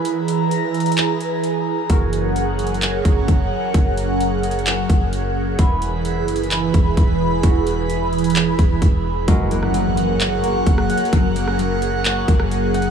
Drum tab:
HH |x-----------x-----------x-----------x--x--x--x--x-----------x-----------x-----------------------|x-----------x-----------x-----------x---x---x---x-----------x-----------x-----------------------|x-----------x-----------x-----------x---x---x---x-----------x-----------x-----------------------|x-----------x-----------x-----------x---x---x---x-----------x-----------x-----------------------|
CP |------------------------------------------------x-----------------------------------------------|------------------------------------------------x-----------------------------------------------|------------------------------------------------x-----------------------------------------------|------------------------------------------------x-----------------------------------------------|
SD |------------------------------------------------------------------------------------------------|------------------------------------------------------------------------------------------------|------------------------------------------------------------------------------------------------|------------------------------------------------------------------------------------------------|
BD |------------------------------------------------------------------------------------------------|o-----------------------------------------------------------o-----------o-----------------------|o-----------------------------------------------------------o-----------------------------------|o-----------------------------------------------------------o-----------o-----------------------|

HH |x-----------x-----------x-----------x--x--x--x--x-----------x-----------x-----------------------|x-----------x-----------x-----------x-----------x-----------x-----------x-----------x---x---x---|x-----------x-----------x-----------x-----------x-----------x-----------x-----------x---x-------|
CP |------------------------------------------------x-----------------------------------------------|------------------------------------------------x-----------------------------------------------|------------------------------------------------x-----------------------------------------------|
SD |------------------------------------------------------------------------------------------------|------------------r-----------------------------------------------------------r-----------------|------------------r-----------------------------------------------r-----------------------------|
BD |o-----------------------------------------------------------o-----------o-----------------------|o-----------------------------------------------------------------------o-----------------------|o-----------------------------------------------------------o-----------------------------------|